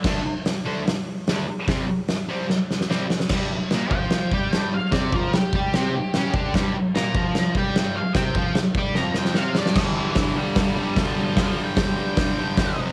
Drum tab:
CC |x---------------|----------------|x---x---x---x---|x---x---x---x---|
HH |----o---o---o---|o---o-----------|----------------|----------------|
SD |o---o---o---o---|o---o---o-ooo-oo|o---o---o---o---|o---o---o---o---|
BD |o---------------|o---------------|o-----o---o-----|o-o---o-------o-|

CC |x---x---x---x---|x---x-----------|x---------------|----------------|
HH |----------------|----------------|----o---o---o---|o---o---o---o---|
SD |o---o---o---o---|o---o---o-ooo-oo|o---o---o---o---|o---o---o---o---|
BD |o-----o---o-----|o-o---o---------|o---o---o---o---|o---o---o---o---|